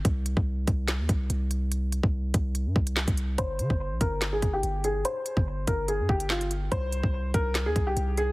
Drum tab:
HH |x-x---x-x-x-x-x-|x-x---x-x--x-xx-|x-x---x-x-x-x-x-|x-x---x-x--x-xx-|
CP |--------x-------|------------x---|--------x-------|------------x---|
SD |--------o-------|------------o---|--------o-------|------------o---|
BD |o--o--o---o-----|---o--o---o--o--|o--o--o---o-----|---o--o---o-----|

HH |x-x---x-x-x-x-x-|
CP |--------x-------|
SD |--------o-------|
BD |o--o--o---o-----|